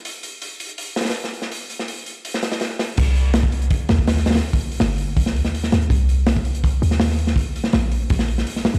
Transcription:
<<
  \new Staff \with { instrumentName = "808-style bass" } { \clef bass \time 4/4 \key c \minor \tempo 4 = 164 r1 | r1 | c,2~ c,8 ees,4. | r4 g,,4 c,8 ees,4 ees,8 |
c,2~ c,8 ees,4. | r4 bes,,4 bes,,4 r8. des,16 | }
  \new DrumStaff \with { instrumentName = "Drums" } \drummode { \time 4/4 hho8 hho8 hho8 hho16 hh16 hho8 <hho sn>32 <hho sn>32 <hho sn>32 <hho sn>32 hho16 sn16 hho16 sn16 | hho8 hho16 sn16 hho8 hho8 hho16 sn16 <hho sn>16 <hho sn>16 <hho sn>16 sn16 <hho sn>8 | <cymc hho bd>8 hho8 <hho sn>16 bd16 hho16 hh16 <hho bd>8 <hho sn>16 bd16 <hho sn>16 sn16 <hho sn>32 <hho sn>32 <hho sn>16 | hho16 <hho bd>8 hho16 <hho sn>8 hho8 <hho bd>16 sn16 hho16 sn16 hho16 sn16 <hho sn>16 hh16 |
<hho bd>8 hho8 <hho sn>16 bd16 hho16 hh16 <hho bd>8 hho16 sn16 <hho sn>16 sn16 hho16 sn16 | <hho bd>8 hho16 sn16 <hho sn>8 hho8 <hho bd>16 sn16 hho16 sn16 hho16 sn16 <hho sn>16 hh16 | }
>>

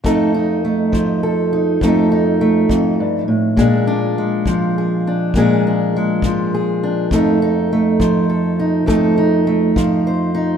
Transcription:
<<
  \new Staff \with { instrumentName = "Steel-string acoustic guitar" } { \time 12/8 \key f \mixolydian \tempo 4. = 68 << { <a ees' a'>8 ees'8 a4 a'8 ees'8 <a ees' a'>8 ees'8 a2 | <aes d' aes'>8 d'8 aes4 aes'8 d'8 <aes d' aes'>8 d'8 aes4 aes'8 d'8 | <a ees' a'>8 ees'8 a4 a'8 ees'8 <a ees' a'>8 ees'8 a4 c''8 ees'8 | } \\ { f,4. f4. f,4. f,8 g,8 a,8 | bes,4. f4. bes,4. f4. | f,4. f4. f,4. f4. | } >> }
  \new DrumStaff \with { instrumentName = "Drums" } \drummode { \time 12/8 bd4. bd4. bd4. bd4. | bd4. bd4. bd4. bd4. | bd4. bd4. bd4. bd4. | }
>>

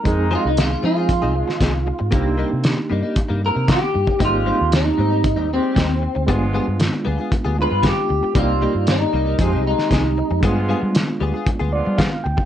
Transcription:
<<
  \new Staff \with { instrumentName = "Clean electric guitar" } { \time 4/4 \key c \minor \tempo 4 = 116 bes'8 f'16 ees'16 f'8 f'2~ f'8~ | f'8 r2 bes'8 g'4 | f'4 ees'4. c'4. | r2 r8 b'8 g'4 |
f'4 ees'4. ees'4. | r1 | }
  \new Staff \with { instrumentName = "Reed electric piano" } { \time 4/4 \key c \minor << { r1 | r1 | r1 | r1 |
r1 | r2 r8 d''8 f''8 g''8 | } \\ { <aes c' ees' aes'>1 | <bes d' ees' g'>1 | <bes c' ees' g'>1 | <aes b d' f'>2~ <aes b d' f'>8 <aes b d' f'>4. |
<bes ees' g' d''>2 <aes c' ees' g'>2 | <aes b d' f'>1 | } >> }
  \new Staff \with { instrumentName = "Clean electric guitar" } { \time 4/4 \key c \minor r8 <f c' ees' aes'>16 r8. <f c' ees' aes'>16 <c' ees' aes'>16 r16 <f c' ees' aes'>16 r8 <f c' ees' aes'>16 r8. | <c g bes ees'>16 r16 <c g bes ees'>16 r8. <c g bes ees'>16 <g bes ees'>16 r16 <c g bes ees'>16 r8 <c g bes ees'>16 r8. | <aes, g c' ees'>16 r16 <aes, g c' ees'>16 r8. <aes, g c' ees'>16 <g c' ees'>16 r16 <aes, g c' ees'>16 r8 <aes, g c' ees'>16 r8. | <g b f' aes'>16 r16 <g b f' aes'>16 r8. <g b f' aes'>16 <b f' aes'>16 r16 <g b f' aes'>16 r8 <g b f' aes'>16 r8. |
<c g bes ees'>16 r16 <c g bes ees'>16 r8. <c g bes ees'>16 <g bes ees'>16 <f c' ees' aes'>16 <f c' ees' aes'>16 r8 <f c' ees' aes'>16 r8. | <g b f' aes'>16 r16 <g b f' aes'>16 r8. <g b f' aes'>16 <b f' aes'>16 r16 <g b f' aes'>16 r8 <g b f' aes'>16 r8. | }
  \new Staff \with { instrumentName = "Horn section" } { \time 4/4 \key c \minor <ees aes ees'>4 r4. <f aes ees' f'>8. r8. | <c bes c'>4 r4. <bes c'>8. r8. | <g aes c' g'>4 r4. <g aes c' g'>8. r8. | <f aes b f'>4 r4. <f aes b f'>8. r8. |
<c bes c'>4 r4 <f aes ees' f'>8 <f aes ees' f'>8. r8. | <f aes b f'>4 r4. <f aes b f'>8. r8. | }
  \new Staff \with { instrumentName = "Fingered electric bass" } { \clef bass \time 4/4 \key c \minor f,8. c,8. f8. c,8 r16 c,8. aes,16 | c,8. c8 r16 g,16 r8 g,8 c8 r16 g,16 r16 | aes,,8. ees,8. aes,8. ees,8 r16 ees,8. d,16 | g,,8. g,8 r16 d,16 r8 d,8 g,8 r16 d,16 r16 |
c,8. g,8. c,8 f,16 c,8 r16 c,8. f,16 | g,8. g8 r16 d,16 r8 d,8 g8 r16 d,16 r16 | }
  \new DrumStaff \with { instrumentName = "Drums" } \drummode { \time 4/4 <hh bd>4 <hh sn>4 <hh bd>8. sn16 <hh bd sn>4 | <hh bd>4 <hh sn>4 <hh bd>4 <hh bd sn>8. bd16 | <hh bd>4 <hh sn>4 <hh bd>4 <hh bd sn>4 | <hh bd>4 <hh sn>4 <hh bd>4 <hh bd sn>4 |
<hh bd>4 <hh sn>4 <hh bd>8. sn16 <hh bd sn>4 | <hh bd>4 <hh sn>4 <hh bd>4 <hh bd sn>8. bd16 | }
>>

